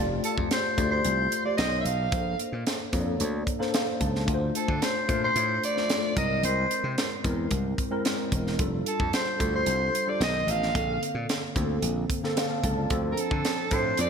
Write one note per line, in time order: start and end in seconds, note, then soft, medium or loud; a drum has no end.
0.00 0.19 F1 medium
0.00 0.60 A3 medium
0.00 0.60 F4 medium
0.00 0.60 G4 medium
0.00 0.61 D5 medium
0.24 0.37 A4 medium
0.24 closed hi-hat medium
0.37 0.48 F2 medium
0.37 kick medium
0.51 0.89 C5 medium
0.51 snare loud
0.51 closed hi-hat medium
0.77 1.00 D2 medium
0.77 1.30 A3 medium
0.77 1.30 F4 medium
0.77 1.31 G4 medium
0.77 1.31 D5 medium
0.77 kick medium
0.77 closed hi-hat medium
0.91 1.41 C5 medium
1.05 1.27 C2 medium
1.05 closed hi-hat medium
1.32 closed hi-hat medium
1.44 1.58 A3 medium
1.44 1.58 F4 medium
1.44 1.58 G4 medium
1.44 1.57 D5 medium
1.44 1.58 D5 medium
1.57 1.80 B1 medium
1.57 2.01 B3 medium
1.57 2.01 D#4 medium
1.57 2.01 A#4 medium
1.57 2.01 C#5 medium
1.57 1.76 D#5 medium
1.57 snare loud
1.57 closed hi-hat medium
1.81 1.86 E5 medium
1.85 2.07 B1 medium
1.85 2.39 F5 medium
1.85 closed hi-hat medium
2.11 2.34 A#1 medium
2.11 2.75 A#3 medium
2.11 2.76 D4 medium
2.11 2.76 A4 medium
2.11 2.76 C5 medium
2.11 kick loud
2.11 closed hi-hat medium
2.39 closed hi-hat medium
2.52 2.63 A#2 medium
2.67 snare loud
2.67 closed hi-hat medium
2.92 3.15 F2 medium
2.92 3.46 A#3 medium
2.92 3.46 D4 medium
2.92 3.46 A4 medium
2.92 3.00 C#5 medium
2.92 kick medium
2.92 closed hi-hat medium
3.00 3.50 D5 medium
3.20 3.42 D2 medium
3.20 closed hi-hat medium
3.47 kick medium
3.47 closed hi-hat medium
3.59 4.13 A#3 medium
3.59 4.13 D4 medium
3.59 4.13 A4 medium
3.59 4.14 C5 medium
3.59 snare soft
3.74 3.99 F5 medium
3.74 snare loud
3.74 closed hi-hat medium
4.00 4.28 C#2 medium
4.00 4.26 A5 medium
4.00 kick medium
4.00 closed hi-hat medium
4.16 snare soft
4.26 4.50 D2 medium
4.26 4.91 A3 medium
4.26 4.91 D4 medium
4.26 4.91 F4 medium
4.26 4.34 A#4 medium
4.26 kick loud
4.26 closed hi-hat medium
4.34 4.95 C5 medium
4.55 4.84 A4 medium
4.55 closed hi-hat medium
4.68 4.79 D3 medium
4.68 kick medium
4.82 5.23 C5 medium
4.82 snare loud
4.82 closed hi-hat medium
5.08 5.31 A#2 medium
5.08 5.61 A3 medium
5.08 5.62 D4 medium
5.08 5.62 F4 medium
5.08 5.62 C5 medium
5.08 kick medium
5.08 closed hi-hat medium
5.24 5.61 C5 medium
5.36 5.58 A2 medium
5.36 closed hi-hat medium
5.63 6.14 D5 medium
5.63 closed hi-hat medium
5.76 6.16 A3 medium
5.76 6.16 D4 medium
5.76 6.17 F4 medium
5.76 6.17 A4 medium
5.76 snare soft
5.90 snare loud
5.90 closed hi-hat medium
6.16 6.39 C2 medium
6.16 7.02 G#3 medium
6.16 7.03 C4 medium
6.16 7.03 E4 medium
6.16 7.03 A#4 medium
6.16 6.42 D#5 medium
6.16 kick medium
6.16 closed hi-hat medium
6.43 6.65 C2 loud
6.43 6.94 C5 medium
6.43 closed hi-hat medium
6.71 closed hi-hat medium
6.84 6.95 C3 medium
6.98 snare loud
6.98 closed hi-hat medium
7.23 7.46 E2 medium
7.23 7.77 G#3 medium
7.23 7.77 C4 medium
7.23 7.78 E4 medium
7.23 7.78 A#4 medium
7.23 kick medium
7.23 closed hi-hat medium
7.51 7.73 C2 medium
7.51 kick medium
7.51 closed hi-hat medium
7.78 kick medium
7.78 closed hi-hat medium
7.90 8.44 G#3 medium
7.90 8.45 C4 medium
7.90 8.45 E4 medium
7.90 8.45 A#4 medium
8.05 snare loud
8.05 closed hi-hat medium
8.32 8.59 E1 medium
8.32 kick medium
8.32 closed hi-hat medium
8.47 snare soft
8.59 8.81 F1 medium
8.59 9.23 G3 medium
8.59 9.23 D4 medium
8.59 9.23 F4 medium
8.59 9.23 A4 medium
8.59 kick loud
8.59 closed hi-hat medium
8.86 9.12 A4 medium
8.86 closed hi-hat medium
9.00 9.11 F2 medium
9.00 kick medium
9.13 9.51 C5 medium
9.13 snare medium
9.13 closed hi-hat medium
9.39 9.62 D2 medium
9.39 9.93 G3 medium
9.39 9.93 D4 medium
9.39 9.93 F4 medium
9.39 9.93 A4 medium
9.39 kick medium
9.39 closed hi-hat medium
9.56 10.10 C5 medium
9.66 9.89 C2 medium
9.66 closed hi-hat medium
9.95 closed hi-hat medium
10.07 10.21 G3 medium
10.07 10.21 D4 medium
10.07 10.21 F4 medium
10.07 10.21 A4 medium
10.07 10.22 D5 medium
10.20 10.42 B1 medium
10.20 10.64 D#3 medium
10.20 10.64 B3 medium
10.20 10.64 C#4 medium
10.20 10.64 A#4 medium
10.20 10.52 D#5 medium
10.20 snare loud
10.20 closed hi-hat medium
10.47 10.69 A1 medium
10.47 11.03 F5 medium
10.47 closed hi-hat medium
10.63 snare soft
10.74 10.97 A#1 medium
10.74 11.39 D3 medium
10.74 11.39 A#3 medium
10.74 11.39 C4 medium
10.74 11.39 A4 medium
10.74 kick loud
10.74 closed hi-hat medium
11.03 closed hi-hat medium
11.15 11.26 A#2 medium
11.29 snare loud
11.29 closed hi-hat medium
11.55 11.78 D2 medium
11.55 12.09 D3 medium
11.55 12.09 A#3 medium
11.55 12.09 C4 medium
11.55 12.09 A4 medium
11.55 kick medium
11.55 closed hi-hat medium
11.82 12.04 A#1 medium
11.82 closed hi-hat medium
12.10 kick medium
12.10 closed hi-hat medium
12.23 12.76 D3 medium
12.23 12.77 A#3 medium
12.23 12.77 C4 medium
12.23 12.37 A4 medium
12.23 snare soft
12.37 12.50 C5 soft
12.37 12.49 F5 medium
12.37 12.50 A5 medium
12.37 snare loud
12.37 closed hi-hat medium
12.50 12.76 A4 medium
12.50 12.76 F5 medium
12.64 12.86 C#2 medium
12.64 12.89 A5 medium
12.64 kick medium
12.64 closed hi-hat medium
12.77 13.03 F4 medium
12.77 13.03 D5 medium
12.90 13.12 D2 medium
12.90 13.54 F3 medium
12.90 13.54 C4 medium
12.90 13.55 D4 medium
12.90 13.55 A4 medium
12.90 kick loud
12.90 closed hi-hat medium
13.12 13.21 A#4 medium
13.17 13.74 A4 medium
13.17 closed hi-hat medium
13.31 13.42 D3 medium
13.31 kick medium
13.45 snare loud
13.45 closed hi-hat medium
13.71 13.93 A2 medium
13.71 14.10 F3 medium
13.71 14.10 C4 medium
13.71 14.10 D4 medium
13.71 14.10 A4 medium
13.71 13.99 C5 medium
13.71 kick medium
13.71 closed hi-hat medium
13.97 14.10 F2 medium
13.97 14.10 D5 medium
13.97 closed hi-hat medium